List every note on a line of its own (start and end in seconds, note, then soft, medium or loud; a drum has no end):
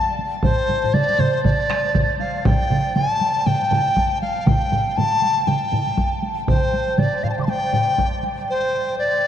0.00 0.14 A5 medium
0.08 taiko high soft
0.19 taiko high soft
0.34 taiko high soft
0.43 0.95 C5 medium
0.43 taiko medium
0.43 taiko low-mid medium
0.43 taiko mid medium
0.43 taiko high medium
0.59 taiko high soft
0.69 taiko low-mid medium
0.69 taiko mid medium
0.69 taiko high soft
0.84 taiko low-mid medium
0.84 taiko mid medium
0.84 taiko high soft
0.94 1.21 D5 medium
0.94 taiko low-mid medium
0.94 taiko mid medium
0.94 taiko high medium
1.09 taiko high soft
1.19 1.44 C5 medium
1.19 taiko low-mid medium
1.19 taiko mid medium
1.19 taiko high soft
1.34 taiko high soft
1.44 2.16 D5 medium
1.44 taiko medium
1.44 taiko low-mid medium
1.44 taiko mid medium
1.44 taiko high medium
1.59 taiko high soft
1.70 taiko rim medium
1.70 taiko high soft
1.85 taiko high soft
1.95 taiko medium
1.95 taiko low-mid medium
1.95 taiko mid medium
1.95 taiko high medium
2.10 taiko high soft
2.19 2.47 F5 medium
2.19 taiko high soft
2.35 taiko high soft
2.45 2.97 G5 medium
2.45 taiko loud
2.45 taiko low-mid medium
2.45 taiko mid medium
2.45 taiko high medium
2.60 taiko high soft
2.70 taiko low-mid medium
2.70 taiko mid medium
2.70 taiko high soft
2.86 taiko high soft
2.96 3.48 A5 medium
2.96 taiko low-mid medium
2.96 taiko mid medium
2.96 taiko high medium
3.21 taiko high soft
3.37 taiko high soft
3.46 4.21 G5 medium
3.46 taiko low-mid medium
3.46 taiko mid medium
3.46 taiko high medium
3.62 taiko high soft
3.71 taiko low-mid medium
3.71 taiko mid medium
3.71 taiko high soft
3.87 taiko high soft
3.97 taiko medium
3.97 taiko high medium
4.12 taiko high soft
4.22 4.48 F5 medium
4.22 taiko high soft
4.37 taiko high soft
4.47 4.98 G5 medium
4.47 taiko medium
4.47 taiko low-mid medium
4.47 taiko mid medium
4.47 taiko high medium
4.63 taiko high soft
4.72 taiko low-mid medium
4.72 taiko mid medium
4.72 taiko high soft
4.97 5.49 A5 medium
4.97 taiko low-mid medium
4.97 taiko mid medium
4.97 taiko high medium
5.22 taiko high soft
5.37 taiko high soft
5.47 6.23 G5 medium
5.47 taiko low-mid medium
5.47 taiko mid medium
5.47 taiko high medium
5.63 taiko high soft
5.72 taiko low-mid medium
5.72 taiko mid medium
5.72 taiko high medium
5.87 taiko high soft
5.97 taiko medium
5.97 taiko high medium
6.13 taiko high soft
6.23 taiko high medium
6.38 taiko high soft
6.48 7.00 C5 medium
6.48 taiko loud
6.48 taiko low-mid medium
6.48 taiko mid medium
6.48 taiko high medium
6.63 taiko high soft
6.73 taiko high soft
6.88 taiko high soft
6.98 7.25 D5 medium
6.98 taiko low-mid medium
6.98 taiko mid medium
6.98 taiko high medium
7.24 7.29 F5 medium
7.24 taiko low-mid medium
7.24 taiko mid medium
7.30 7.37 G5 soft
7.30 7.33 A5 soft
7.37 7.40 F5 soft
7.37 7.42 D6 soft
7.37 taiko low-mid medium
7.37 taiko mid medium
7.37 taiko high soft
7.43 7.50 A5 medium
7.43 7.45 C6 medium
7.48 8.24 G5 medium
7.48 taiko high medium
7.63 taiko high soft
7.73 taiko low-mid medium
7.73 taiko mid medium
7.73 taiko high soft
7.88 taiko high soft
7.98 taiko medium
7.98 taiko high medium
8.14 taiko high soft
8.23 taiko high soft
8.39 taiko high soft
8.50 8.96 C5 medium
8.99 9.27 D5 medium